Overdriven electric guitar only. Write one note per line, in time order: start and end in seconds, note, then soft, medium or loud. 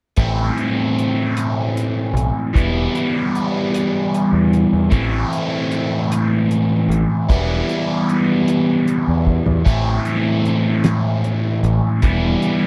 0.17 2.52 A2 medium
0.17 2.54 E3 medium
0.17 2.53 A3 medium
0.17 2.53 C4 medium
0.17 2.56 E4 medium
2.54 4.91 E3 medium
2.54 4.89 G3 medium
2.54 4.92 B3 medium
2.54 4.93 E4 medium
4.91 7.26 A2 medium
4.91 7.28 E3 medium
4.91 7.27 A3 medium
4.91 7.27 C4 medium
4.91 7.30 E4 medium
7.28 9.65 E3 medium
7.28 9.64 G3 medium
7.28 9.67 B3 medium
7.28 9.67 E4 medium
9.65 12.00 A2 medium
9.65 12.02 E3 medium
9.65 12.01 A3 medium
9.65 12.02 C4 medium
9.65 12.04 E4 medium
12.02 12.67 E3 medium
12.02 12.67 G3 medium
12.02 12.67 B3 medium
12.02 12.67 E4 medium